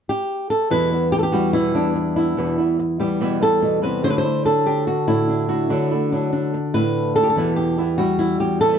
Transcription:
0.09 G4
0.50 A4
0.70 E2 B2 E3 G3 B3 E4 B4
0.91 E3 G3 B3 E4
1.12 G4, muted nylon-string guitar stroke
1.19 A4
1.23 G4
1.32 E3 G3 B3 E4 F#4
1.53 E2 B2 E3 G3 B3 E4
1.75 E2 E3 G3 B3 D4 E4
1.95 muted nylon-string guitar stroke
2.16 E3 G3 B3 E4
2.37 E2 B2 E3 G3 B3 E4
2.58 E3 G3 B3 E4
2.79 muted nylon-string guitar stroke
2.99 E3 G3 B3 E4 G4
3.20 E2 B2 E3 G3 B3 E4
3.41 E2 E3 G3 B3 E4 A4
3.62 B2, muted nylon-string guitar stroke
3.82 C3 E3 G3 B3 E4 B4
4.03 D3 F#3 A3 D4 E4 C5
4.10 B4
4.18 C5
4.24 A3 D4 E4
4.45 F#3 A3 D4 E4 A4
4.66 D4 G4
4.87 F#4, muted nylon-string guitar stroke
5.08 A2 A3 D4 E4
5.29 D4
5.49 A3 D4 E4 F#4
5.69 D3 F#3 A3 D4 E4
5.91 A3 D4 E4
6.12 F#3 A3 D4 E4
6.33 D4
6.53 muted nylon-string guitar stroke
6.74 A2 A3 D4 E4 B4
7.15 A3 D4 E4 A4
7.23 G4
7.29 A4
7.36 E2 B2 E3 G3 B3 E4
7.56 G4
7.78 E3 G3 B3 E4
7.98 E3 G3 B3 E4 F#4
8.19 E4, muted nylon-string guitar stroke
8.40 E2 G4
8.61 E3 G3 B3 E4 A4
8.68 B2 E3 G3 B3 E4
8.72 B2 E3 G3 B3 E4

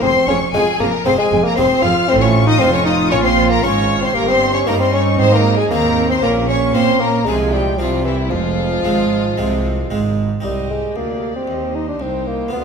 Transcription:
0.01 F1 F2 C4 G#4 C5 C6
0.28 F1 F2 C#4 G#4 C#5 C#6
0.54 F1 F2 G#3 C4 F4 G#4 G#5
0.80 F1 F2 A#3 G#4 A#4 A#5
1.05 F1 F2 C4 F4 G#4 C5 C6
1.18 G#3 G#4 G#5
1.31 F1 F2 G#4
1.44 A#3 A#4 A#5
1.57 F1 F2 C4 F4 G#4 C5 C6
1.83 F1 F2 F4 G#4 F5 F6
2.09 A1 A2 C4 F4 C5 C6
2.21 C#4 C#5 C#6
2.47 D#4 D#5 D#6
2.59 F1 F2 C4 D#4 F4 C5 C6
2.73 C#4 C#5 C#6
2.85 D#4 D#5 D#6
3.11 A#1 A#2 C#4 C#5 C#6
3.24 C4 C5 C6
3.50 A#3 A#4 A#5
3.62 G#1 G#2 C#4 F4 A#4 C#5 C#6
4.02 C4 C5 C6
4.14 G1 G2 A#3 G4 A#4 A#5
4.28 C4 C5 C6
4.54 C#4 C#5 C#6
4.67 G2 G3 A#3 C#4 D#4 A#4 A#5
4.80 C4 C5 C6
4.93 C#4 C#5 C#6
5.18 G#1 G#2 C4 C5 C6
5.32 A#3 A#4 A#5
5.57 G#3 G#4 G#5
5.70 D#2 A#3 C4 D#4 G#4 A#4 A#5
6.09 C4 C5 C6
6.22 A#1 A#2 A#3 C#4 A#4 A#5
6.48 C#4 C#5 C#6
6.75 A#2 A#3 C4 C#4 F4 C5 C6
6.99 A#3 A#4 A#5
7.26 C2 C3 F3 G#3 C4 F4 G#4 G#5
7.52 G3 G4 G5
7.78 C2 C3 F3 G3 C4 F4 G4 F5
8.04 E3 E4 E5
8.30 F1 F2 F3 G#3 F4 F5
8.84 G#1 G#2 G#3 C4 F4
9.38 C2 C3 G#3 C4 F4
9.90 G#1 G#2 G#3 C4 F4
10.40 C2 G3 C4 D#4 G4 D#5 G5
10.70 G#3
10.95 D2 A#3 D5 F5
11.36 C4
11.47 D#2 C5 D#5
11.75 D#4
11.88 D4
11.99 C2 C4 D#4 G5
12.27 A#3
12.48 D2 B3 F4 D5 F5
12.53 B3

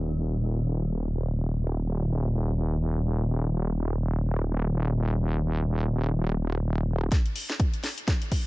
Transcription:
Already playing: D#1
7.12 kick, snare, closed hi-hat
7.26 closed hi-hat
7.36 open hi-hat
7.50 snare, closed hi-hat
7.60 kick, closed hi-hat
7.74 closed hi-hat
7.84 snare, open hi-hat
7.98 closed hi-hat
8.08 kick, snare, closed hi-hat
8.22 closed hi-hat
8.32 kick, open hi-hat

